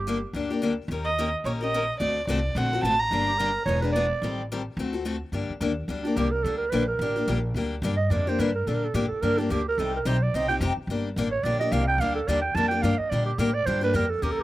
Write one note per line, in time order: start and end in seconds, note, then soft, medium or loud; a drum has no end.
0.00 0.23 G1 medium
0.00 0.30 G4 medium
0.07 0.17 D3 medium
0.07 0.17 G3 medium
0.07 0.17 A#3 medium
0.07 0.17 D4 medium
0.07 0.18 G4 medium
0.33 0.78 D2 medium
0.33 0.49 D3 medium
0.33 0.49 G3 medium
0.33 0.50 A#3 medium
0.33 0.50 D4 medium
0.33 0.49 G4 medium
0.50 0.62 A#3 soft
0.50 0.62 D4 medium
0.50 0.61 G4 medium
0.62 0.72 D3 medium
0.62 0.72 G3 medium
0.62 0.72 A#3 medium
0.62 0.72 D4 medium
0.62 0.73 G4 medium
0.88 1.33 D#2 medium
0.88 1.08 D#3 medium
0.88 1.09 A#3 medium
0.88 1.09 C#4 medium
0.88 1.09 G4 medium
0.92 1.09 A#4 medium
1.04 1.30 D#5 medium
1.18 1.28 D#3 medium
1.18 1.28 A#3 medium
1.18 1.28 C#4 medium
1.18 1.28 G4 medium
1.18 1.28 A#4 loud
1.44 1.89 A#1 medium
1.44 1.60 D#3 medium
1.44 1.60 A#3 medium
1.44 1.61 C#4 medium
1.44 1.61 G4 medium
1.44 1.60 A#4 medium
1.44 1.52 C#5 medium
1.61 1.73 C#4 soft
1.61 1.73 G4 soft
1.61 1.72 A#4 medium
1.61 1.98 D#5 medium
1.74 1.83 D#3 medium
1.74 1.84 A#3 medium
1.74 1.84 C#4 medium
1.74 1.84 G4 medium
1.74 1.84 A#4 medium
2.00 2.22 D2 medium
2.00 2.18 D3 medium
2.00 2.19 A3 medium
2.00 2.19 C4 medium
2.00 2.19 F#4 medium
2.00 2.19 A4 medium
2.00 2.26 D5 medium
2.27 2.51 C2 medium
2.27 2.38 D3 medium
2.27 2.39 A3 medium
2.27 2.39 C4 medium
2.27 2.39 F#4 loud
2.27 2.39 A4 loud
2.27 2.59 D5 medium
2.55 2.79 A#1 medium
2.55 2.71 D3 medium
2.55 2.71 A3 medium
2.55 2.71 C4 medium
2.55 2.72 F#4 medium
2.55 2.72 A4 medium
2.55 2.83 F#5 medium
2.73 2.84 C4 medium
2.73 2.84 F#4 medium
2.73 2.84 A4 medium
2.83 3.07 A1 medium
2.83 2.94 D3 medium
2.83 2.94 A3 medium
2.83 2.95 C4 medium
2.83 2.95 F#4 medium
2.83 2.95 A4 medium
2.83 3.01 A5 loud
3.00 3.83 A#5 loud
3.11 3.55 G1 medium
3.11 3.30 D3 medium
3.11 3.30 G3 medium
3.11 3.30 A#3 medium
3.11 3.31 D4 medium
3.11 3.31 G4 medium
3.28 3.40 G4 medium
3.38 3.49 D3 medium
3.38 3.50 G3 medium
3.38 3.50 A#3 medium
3.38 3.50 D4 medium
3.38 3.50 G4 loud
3.38 3.65 A#4 medium
3.65 4.10 E1 medium
3.65 3.82 E3 medium
3.65 3.83 B3 medium
3.65 3.82 D4 medium
3.65 3.81 G#4 medium
3.65 3.81 C#5 loud
3.81 3.95 B3 soft
3.81 3.94 D4 medium
3.81 3.94 G#4 medium
3.81 3.92 B4 medium
3.92 4.05 E3 medium
3.92 4.05 B3 medium
3.92 4.05 D4 medium
3.92 4.05 G#4 medium
3.92 4.45 D5 medium
4.22 4.66 A1 medium
4.22 4.41 D#3 medium
4.22 4.41 G3 medium
4.22 4.41 C4 medium
4.22 4.42 G4 medium
4.22 4.42 A4 medium
4.52 4.61 D#3 medium
4.52 4.61 G3 medium
4.52 4.61 C4 medium
4.52 4.61 G4 loud
4.52 4.61 A4 medium
4.77 5.21 D2 medium
4.77 4.93 D3 medium
4.77 4.94 A3 medium
4.77 4.94 C4 medium
4.77 4.93 F#4 medium
4.77 4.92 A4 medium
4.93 5.04 C4 soft
4.93 5.05 F#4 medium
4.93 5.05 A4 medium
5.05 5.15 D3 medium
5.05 5.16 A3 medium
5.05 5.16 C4 medium
5.05 5.16 F#4 medium
5.05 5.16 A4 medium
5.32 5.47 G2 medium
5.32 5.51 D3 medium
5.32 5.52 G3 medium
5.32 5.52 A#3 medium
5.32 5.52 D4 medium
5.32 5.52 G4 medium
5.50 muted upright bass stroke soft
5.61 5.87 D#2 medium
5.61 5.71 D3 medium
5.61 5.71 G3 medium
5.61 5.71 A#3 medium
5.61 5.72 D4 medium
5.61 5.72 G4 medium
5.88 6.15 D2 medium
5.88 6.04 D3 medium
5.88 6.04 G3 medium
5.88 6.04 A#3 medium
5.88 6.04 D4 medium
5.88 6.04 G4 medium
6.03 6.16 A#3 medium
6.03 6.18 D4 medium
6.03 6.17 D4 medium
6.03 6.16 G4 medium
6.16 6.43 C2 medium
6.16 6.27 D3 medium
6.16 6.27 G3 medium
6.16 6.27 A#3 medium
6.16 6.27 D4 medium
6.16 6.33 G4 medium
6.16 6.27 G4 medium
6.31 6.44 A#4 loud
6.43 6.71 D2 medium
6.43 6.63 D3 medium
6.43 6.63 G3 medium
6.43 6.64 A#3 medium
6.43 6.64 D4 medium
6.43 6.64 G4 medium
6.43 6.57 A4 medium
6.58 6.71 A#4 medium
6.69 6.98 A#1 medium
6.69 6.82 D3 medium
6.69 6.83 G3 medium
6.69 6.82 A#3 medium
6.69 6.83 G4 medium
6.69 6.86 B4 loud
6.73 6.83 D4 medium
6.88 7.51 A#4 medium
6.99 7.26 A1 medium
6.99 7.16 D3 medium
6.99 7.16 G3 medium
6.99 7.16 A#3 medium
6.99 7.16 D4 medium
6.99 7.15 G4 medium
7.16 7.26 A#3 soft
7.16 7.27 D4 medium
7.16 7.27 G4 medium
7.28 7.54 A#1 medium
7.28 7.38 D3 medium
7.28 7.38 G3 medium
7.28 7.38 A#3 medium
7.28 7.38 D4 medium
7.28 7.39 G4 medium
7.54 7.81 D2 medium
7.54 7.74 D3 medium
7.54 7.74 G3 medium
7.54 7.75 A#3 medium
7.54 7.74 D4 medium
7.54 7.75 G4 medium
7.82 8.09 G2 medium
7.82 7.93 D3 medium
7.82 7.94 G3 medium
7.82 7.94 A#3 medium
7.82 7.94 D4 medium
7.82 7.94 G4 medium
7.97 8.12 D#5 medium
8.10 8.37 F2 medium
8.10 8.26 D3 medium
8.10 8.26 G3 medium
8.10 8.26 A#3 medium
8.10 8.27 D4 medium
8.10 8.26 G4 medium
8.10 8.30 D5 medium
8.27 8.38 A#3 soft
8.27 8.39 D4 medium
8.27 8.38 G4 medium
8.27 8.42 C5 medium
8.39 8.66 G2 medium
8.39 8.49 D3 medium
8.39 8.50 G3 medium
8.39 8.49 A#3 medium
8.39 8.50 D4 medium
8.39 8.50 G4 medium
8.39 8.54 B4 medium
8.55 8.69 A#4 medium
8.67 8.93 A#2 medium
8.67 8.85 D3 medium
8.67 8.85 G3 medium
8.67 8.86 A#3 medium
8.67 8.86 D4 medium
8.67 8.86 G4 medium
8.67 8.75 A4 medium
8.74 8.86 A#4 medium
8.84 8.96 A4 medium
8.94 9.09 A2 medium
8.94 9.05 D3 medium
8.94 9.05 G3 medium
8.94 9.05 A#3 medium
8.94 9.05 D4 loud
8.94 9.07 G4 medium
8.94 9.05 G4 medium
9.08 9.23 A4 medium
9.08 muted upright bass stroke soft
9.21 9.49 G2 medium
9.21 9.37 D3 medium
9.21 9.37 G3 medium
9.21 9.38 A#3 medium
9.21 9.38 D4 medium
9.21 9.37 G4 medium
9.21 9.40 A#4 loud
9.38 9.50 A#3 soft
9.38 9.52 D4 medium
9.38 9.50 D4 medium
9.38 9.50 G4 medium
9.50 9.77 D2 medium
9.50 9.60 D3 medium
9.50 9.61 G3 medium
9.50 9.61 A#3 medium
9.50 9.61 D4 medium
9.50 9.66 G4 medium
9.50 9.61 G4 medium
9.68 9.80 A#4 loud
9.78 10.05 C2 medium
9.78 9.97 C3 medium
9.78 9.97 G3 medium
9.78 9.97 C4 medium
9.78 9.97 D#4 medium
9.78 9.97 G4 medium
9.78 9.94 A4 medium
9.96 10.08 A#4 medium
10.05 10.32 B1 medium
10.05 10.16 C3 medium
10.05 10.16 G3 medium
10.05 10.16 C4 medium
10.05 10.16 D#4 medium
10.05 10.16 G4 loud
10.05 10.24 C5 medium
10.23 10.37 D5 medium
10.34 10.60 C2 medium
10.34 10.49 C3 medium
10.34 10.49 G3 medium
10.34 10.49 C4 medium
10.34 10.49 D#4 medium
10.34 10.48 G4 medium
10.34 10.48 D#5 medium
10.48 10.61 C4 soft
10.48 10.61 D#4 medium
10.48 10.61 G4 medium
10.48 10.56 G5 loud
10.60 10.75 F1 medium
10.60 10.71 C3 medium
10.60 10.71 G3 medium
10.60 10.72 C4 medium
10.60 10.72 D#4 medium
10.60 10.72 G4 medium
10.77 muted upright bass stroke soft
10.87 11.15 G1 medium
10.87 11.08 D3 medium
10.87 11.08 G3 medium
10.87 11.08 A#3 medium
10.87 11.08 D4 medium
10.87 11.08 G4 medium
11.16 11.43 A1 medium
11.16 11.27 D3 medium
11.16 11.27 G3 medium
11.16 11.28 A#3 medium
11.16 11.28 D4 medium
11.16 11.28 G4 loud
11.31 11.45 C#5 medium
11.43 11.71 A#1 medium
11.43 11.60 D3 medium
11.43 11.60 G3 medium
11.43 11.60 A#3 medium
11.43 11.60 D4 medium
11.43 11.60 G4 medium
11.43 11.59 D5 medium
11.60 11.72 A#3 soft
11.60 11.72 D4 medium
11.60 11.72 G4 medium
11.60 11.74 D#5 medium
11.72 11.97 C2 loud
11.72 11.82 D3 medium
11.72 11.83 G3 medium
11.72 11.83 A#3 medium
11.72 11.83 D4 medium
11.72 11.83 G4 medium
11.72 11.87 F5 medium
11.88 12.01 G5 loud
11.98 12.26 D2 medium
11.98 12.19 D3 medium
11.98 12.19 G3 medium
11.98 12.19 A#3 medium
11.98 12.19 D4 medium
11.98 12.19 G4 medium
11.98 12.14 F5 medium
12.15 12.29 A4 medium
12.28 12.54 D#2 medium
12.28 12.38 D3 medium
12.28 12.38 G3 loud
12.28 12.39 A#3 medium
12.28 12.39 D4 medium
12.28 12.39 G4 medium
12.28 12.41 D5 medium
12.41 12.57 G5 medium
12.55 12.82 F2 medium
12.55 12.71 D3 medium
12.55 12.71 G3 medium
12.55 12.71 A#3 medium
12.55 12.71 D4 medium
12.55 12.70 G4 medium
12.55 12.68 A5 loud
12.68 12.83 G4 medium
12.68 12.83 G5 medium
12.72 12.83 A#3 soft
12.72 12.83 D4 medium
12.82 12.98 G2 medium
12.82 12.94 D3 medium
12.82 12.94 G3 medium
12.82 12.94 A#3 medium
12.82 12.94 D4 medium
12.82 12.94 G4 medium
12.82 13.00 F5 medium
12.98 13.11 D#5 medium
12.98 muted upright bass stroke soft
13.10 13.38 A#2 medium
13.10 13.30 D3 medium
13.10 13.30 G3 medium
13.10 13.30 A#3 medium
13.10 13.30 D4 medium
13.10 13.30 G4 medium
13.10 13.25 D5 medium
13.25 13.40 G4 medium
13.38 13.65 A2 medium
13.38 13.49 D3 medium
13.38 13.49 G3 medium
13.38 13.49 A#3 medium
13.38 13.49 D4 medium
13.38 13.50 G4 loud
13.38 13.55 A#4 medium
13.54 13.67 D5 loud
13.66 13.93 G2 medium
13.66 13.82 D3 medium
13.66 13.82 G3 medium
13.66 13.82 A#3 medium
13.66 13.81 D4 medium
13.66 13.80 G4 medium
13.66 13.82 C5 medium
13.81 13.93 A#3 soft
13.81 13.94 D4 medium
13.81 13.93 G4 medium
13.81 13.97 B4 loud
13.94 14.21 F2 medium
13.94 14.04 D3 medium
13.94 14.04 G3 medium
13.94 14.04 A#3 medium
13.94 14.05 D4 medium
13.94 14.05 G4 medium
13.94 14.11 A#4 medium
14.10 14.25 A4 medium
14.22 14.37 D#2 medium
14.22 14.40 D#3 medium
14.22 14.41 A#3 medium
14.22 14.41 C#4 medium
14.22 14.41 G4 medium
14.22 14.33 G4 medium
14.22 14.41 A#4 medium
14.32 14.42 A4 medium
14.38 muted upright bass stroke soft